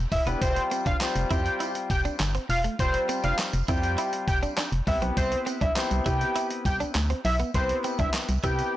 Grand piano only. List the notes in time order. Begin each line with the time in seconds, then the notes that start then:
0.26 B3 D4 E4 G4 B4
0.41 G3 C4 F4 G4 C5
1.01 G3 C4 F4 G4 C5
1.30 G3 C4 F4 G4 C5
2.79 G3 C4 F4 G4 C5
3.68 G3 C4 F4 G4 C5
4.87 B3 C4 E4 G4 B4
5.76 B3 C4 E4 G4 C5
6.06 B3 C4 E4 G4 B4
7.54 B3 C4 E4 G4 B4
8.43 B3 C4 E4 G4 B4